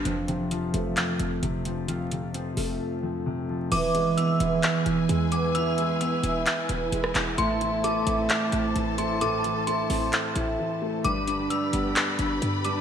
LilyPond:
<<
  \new Staff \with { instrumentName = "Synth bell" } { \time 4/4 \key e \phrygian \tempo 4 = 131 r1 | r1 | d'''4 e'''2~ e'''8 d'''8 | e'''4 e'''4 r2 |
c'''4 d'''2~ d'''8 c'''8 | d'''4 c'''4 r2 | d'''4 e'''2~ e'''8 d'''8 | }
  \new Staff \with { instrumentName = "String section" } { \time 4/4 \key e \phrygian << { r1 | r1 | <gis' b' gis''>1~ | <gis' b' gis''>1 |
<a' c'' a''>1~ | <a' c'' a''>1 | <b' d'' b''>1 | } \\ { r1 | r1 | e'1~ | e'1~ |
e'1~ | e'1 | g'1 | } >> }
  \new Staff \with { instrumentName = "Harp" } { \time 4/4 \key e \phrygian f8 c'8 f'8 f2 c'8 | f'4 c'8 f'4 c'4. | e8 b8 e'8 e2 b8 | e'4 b8 e'4 b4. |
a8 e'8 a'8 a2 e'8 | a'4 e'8 a'4 e'4. | g8 d'8 g'8 g2 d'8 | }
  \new Staff \with { instrumentName = "Grand piano" } { \clef bass \time 4/4 \key e \phrygian f,8 c8 f8 a4 f,8 c8 f8 | f,8 c8 f8 a4 f,8 c8 f8 | e8 gis8 b8 e'4 e8 gis8 b8 | e8 gis8 b8 e'4 e8 gis8 b8 |
a,8 e8 a8 c'4 a,8 e8 a8 | a,8 e8 a8 c'4 a,8 e8 a8 | g,8 d8 g8 b4 g,8 d8 g8 | }
  \new Staff \with { instrumentName = "808-style bass" } { \clef bass \time 4/4 \key e \phrygian f,,4. f,,8 r8 f,,8 f,,4~ | f,,4. f,,8 r2 | e,,4 r8 e,,8 r8 e,,8 e,4~ | e,4. e,,8 r8 e,,8 e,,8 e,,8 |
a,,4. a,,8 r8 a,,8 a,,4~ | a,,4. a,,8 r8 a,,8 r4 | g,,4 r8 g,,8 r8 g,,8 g,4 | }
  \new DrumStaff \with { instrumentName = "Drums" } \drummode { \time 4/4 hh8 hh8 hh8 hh8 <hc hh>8 hh8 hh8 hh8 | hh8 hh8 hh8 hho8 r4 r4 | <cymc hh>8 hh8 hh8 hh8 <hc hh>8 hh8 hh8 hh8 | hh8 hh8 hh8 hh8 <hc hh>8 hh8 hh16 ss16 <hc hh>8 |
hh8 hh8 hh8 hh8 <hc hh>8 hh8 hh8 hh8 | hh8 hh8 hh8 hho8 <hc hh>8 hh8 r4 | hh8 hh8 hh8 hh8 <hc hh>8 hh8 hh8 hh8 | }
>>